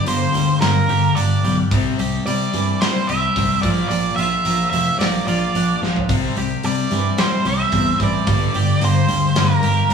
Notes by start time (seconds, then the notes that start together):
Already playing: G2 G4
0.05 G1 G2 D3 A#3 C5, open hi-hat
0.32 D2 G2 D3 G3, open hi-hat
0.60 G1 G2 D3 A#3 A#4, snare, open hi-hat
0.88 G1 G2 D3 G4, open hi-hat
1.15 G1 G2 D3 D4 D5, open hi-hat
1.43 B1 G2 D3 G3, open hi-hat
1.71 C2 C3 G3 C4, kick, open hi-hat
1.99 C2 C3 G3 G4, open hi-hat
2.26 C3 G3 D5, open hi-hat
2.54 G2 C3 E3 G3, open hi-hat
2.81 A#2 C3 G3 C5, snare, open hi-hat
3.07 C2 C3 G3 G4 E5, open hi-hat
3.36 C2 C3 G3 C4, kick, open hi-hat
3.62 A#1 A#2 F3 A#3 D5, kick, open hi-hat
3.89 A#1 A#2 F3 D5, open hi-hat
4.16 A#1 A#2 F3 F4 E5, open hi-hat
4.45 A#1 A#2 F3 A#3, open hi-hat
4.70 F1 A#2 F3 E5, open hi-hat
4.74 F3
4.99 A#1 A#2 F3 A#3 D5, snare, open hi-hat
5.27 A#1 A#2 F3 F4 D5, open hi-hat
5.55 A#1 A#2 F3 D4, open hi-hat
5.82 A#1 A#2 F3, snare
5.96 floor tom
6.09 C2 C3 G3 C4, kick, open hi-hat
6.36 C2 C3 G3 G4, open hi-hat
6.63 C3 G3 D5, open hi-hat
6.91 G2 C3 E3 G3, open hi-hat
7.18 A#2 C3 G3 C5, snare, open hi-hat
7.45 C2 C3 G3 G4 E5, open hi-hat
7.72 E2 C3 G3 C4, kick, open hi-hat
7.99 A1 C3 E3 G3, kick, open hi-hat
8.04 D5
8.26 G1 G2 D3 G3, kick, open hi-hat
8.54 G1 G2 D3 G4, open hi-hat
8.81 G1 G2 D3 A#3, open hi-hat
8.85 C5
9.08 D2 G2 D3 G3, open hi-hat
9.35 G1 G2 D3 A#3, snare, open hi-hat
9.40 A#4
9.62 G1 G2 D3 G4, open hi-hat
9.89 G2 D3, open hi-hat